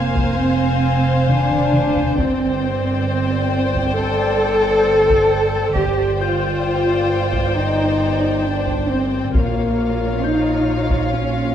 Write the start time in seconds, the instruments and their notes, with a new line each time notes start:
Already playing: double bass section F1, french horn section A#3, cello section A#3, viola section C5, violin section F5 G#5 F6 G#6
0.17 taiko
0.40 cello section C4, french horn section C4
1.28 french horn section D4, cello section D4, taiko mid
1.51 taiko mid
1.73 taiko mid
1.96 taiko low
2.18 double bass section G1, cello section C4, french horn section C4, viola section C5, violin section D5 G5, taiko
3.75 taiko
3.97 french horn section A4, cello section A4
5.09 taiko
5.76 double bass section G1, cello section G4, french horn section G4, viola section C5, violin section D5 G5, taiko
6.21 french horn section F4, cello section F4, harp G6
7.33 taiko
7.56 cello section D#4, french horn section D#4
8.45 cello section D4, french horn section D4
8.67 taiko
8.89 french horn section C4, cello section C4
9.34 double bass section A#1, cello section A#3, french horn section A#3, viola section F4, violin section C#5 F5, taiko
10.23 french horn section D#4, cello section D#4, harp G6
10.90 taiko
11.13 cello section C#4, french horn section C#4